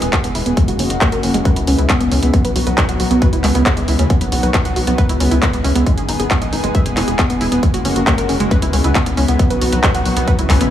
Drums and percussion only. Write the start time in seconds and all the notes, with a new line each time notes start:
0.02 closed hi-hat
0.13 kick, clap, closed hi-hat
0.24 closed hi-hat
0.35 open hi-hat
0.46 closed hi-hat
0.57 kick, closed hi-hat
0.68 closed hi-hat
0.79 open hi-hat
0.90 closed hi-hat
1.01 kick, clap, closed hi-hat
1.12 closed hi-hat
1.23 open hi-hat
1.34 closed hi-hat
1.45 kick, closed hi-hat
1.56 closed hi-hat
1.67 open hi-hat
1.78 closed hi-hat
1.89 kick, clap, closed hi-hat
2.01 closed hi-hat
2.12 open hi-hat
2.23 closed hi-hat
2.34 kick, closed hi-hat
2.45 closed hi-hat
2.56 open hi-hat
2.67 closed hi-hat
2.78 kick, clap, closed hi-hat
2.89 closed hi-hat
3.00 open hi-hat
3.11 closed hi-hat
3.22 kick, closed hi-hat
3.33 closed hi-hat
3.44 clap, open hi-hat
3.55 closed hi-hat
3.66 kick, clap, closed hi-hat
3.77 closed hi-hat
3.88 open hi-hat
3.99 closed hi-hat
4.10 kick, closed hi-hat
4.21 closed hi-hat
4.32 open hi-hat
4.43 closed hi-hat
4.54 kick, clap, closed hi-hat
4.65 closed hi-hat
4.76 open hi-hat
4.87 closed hi-hat
4.98 kick, closed hi-hat
5.09 closed hi-hat
5.20 open hi-hat
5.31 closed hi-hat
5.42 kick, clap, closed hi-hat
5.53 closed hi-hat
5.64 open hi-hat
5.75 closed hi-hat
5.86 kick, closed hi-hat
5.98 closed hi-hat
6.09 open hi-hat
6.20 closed hi-hat
6.31 kick, clap, closed hi-hat
6.42 closed hi-hat
6.53 open hi-hat
6.64 closed hi-hat
6.75 kick, closed hi-hat
6.86 closed hi-hat
6.97 clap, open hi-hat
7.08 closed hi-hat
7.19 kick, clap, closed hi-hat
7.30 closed hi-hat
7.41 open hi-hat
7.52 closed hi-hat
7.63 kick, closed hi-hat
7.74 closed hi-hat
7.85 open hi-hat
7.96 closed hi-hat
8.07 kick, clap, closed hi-hat
8.18 closed hi-hat
8.29 open hi-hat
8.40 closed hi-hat
8.51 kick, closed hi-hat
8.62 closed hi-hat
8.73 open hi-hat
8.84 closed hi-hat
8.95 kick, clap, closed hi-hat
9.06 closed hi-hat
9.17 open hi-hat
9.28 closed hi-hat
9.39 kick, closed hi-hat
9.50 closed hi-hat
9.61 open hi-hat
9.72 closed hi-hat
9.83 kick, clap, closed hi-hat
9.95 closed hi-hat
10.06 open hi-hat
10.17 closed hi-hat
10.28 kick, closed hi-hat
10.39 closed hi-hat
10.50 kick, clap, open hi-hat
10.61 closed hi-hat